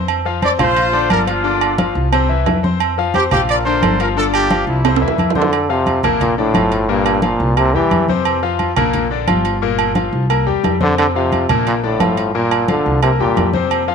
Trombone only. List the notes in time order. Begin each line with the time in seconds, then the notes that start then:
5.36 D3
5.70 C3
6.22 A#2
6.38 A2
6.90 G2
7.24 A#2
7.58 C3
7.74 E3
10.83 D3
10.99 D3
11.16 C3
11.67 A#2
11.84 A2
12.35 A#2
12.69 D3
13.03 C3
13.21 A#2